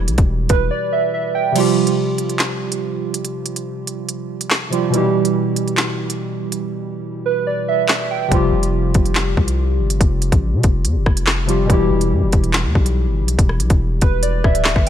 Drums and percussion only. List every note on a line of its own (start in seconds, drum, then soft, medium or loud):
0.08 closed hi-hat medium
0.18 kick loud
0.18 closed hi-hat medium
0.49 kick medium
0.49 closed hi-hat medium
1.56 closed hi-hat medium
1.56 crash medium
1.87 closed hi-hat medium
2.18 closed hi-hat medium
2.29 closed hi-hat soft
2.39 snare loud
2.39 clap medium
2.39 closed hi-hat medium
2.72 closed hi-hat medium
3.14 closed hi-hat medium
3.25 closed hi-hat medium
3.46 closed hi-hat medium
3.56 closed hi-hat medium
3.87 closed hi-hat medium
4.09 closed hi-hat medium
4.41 closed hi-hat medium
4.51 snare loud
4.51 clap loud
4.73 closed hi-hat medium
4.94 closed hi-hat medium
5.25 closed hi-hat medium
5.56 closed hi-hat medium
5.68 closed hi-hat soft
5.77 snare loud
5.77 clap medium
5.77 closed hi-hat medium
6.10 closed hi-hat medium
6.52 closed hi-hat medium
7.89 snare loud
7.89 clap medium
8.32 kick loud
8.32 closed hi-hat medium
8.63 closed hi-hat medium
8.94 kick medium
8.94 closed hi-hat medium
9.06 closed hi-hat soft
9.15 snare loud
9.15 clap medium
9.15 closed hi-hat medium
9.37 kick medium
9.48 closed hi-hat medium
9.90 closed hi-hat medium
10.01 kick loud
10.01 closed hi-hat medium
10.22 closed hi-hat medium
10.32 kick loud
10.32 closed hi-hat medium
10.63 kick medium
10.63 closed hi-hat medium
10.85 closed hi-hat medium
11.06 kick medium
11.06 cross-stick medium
11.17 closed hi-hat medium
11.27 snare loud
11.27 clap medium
11.49 closed hi-hat medium
11.70 kick loud
11.70 closed hi-hat medium
12.01 closed hi-hat medium
12.32 kick medium
12.32 closed hi-hat medium
12.44 closed hi-hat soft
12.53 snare loud
12.53 clap medium
12.53 closed hi-hat medium
12.75 kick medium
12.86 closed hi-hat medium
13.28 closed hi-hat medium
13.39 kick loud
13.39 closed hi-hat medium
13.49 cross-stick medium
13.60 closed hi-hat medium
13.70 kick loud
13.70 closed hi-hat medium
14.01 kick medium
14.01 closed hi-hat medium
14.23 closed hi-hat medium
14.44 kick medium
14.44 cross-stick medium
14.55 closed hi-hat medium
14.65 snare loud
14.65 clap medium
14.76 kick loud